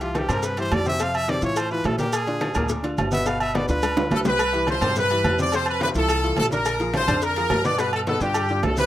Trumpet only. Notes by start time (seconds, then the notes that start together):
0.03 F4
0.18 G4
0.31 A#4
0.45 B4
0.60 C5
0.74 D5
0.88 E5
1.03 F5
1.16 E5
1.30 D5
1.45 C#5
1.58 C5
1.72 B4
1.86 A4
1.99 G4
2.15 G#4
3.14 E5
3.27 F5
3.41 E5
3.55 D5
3.69 B4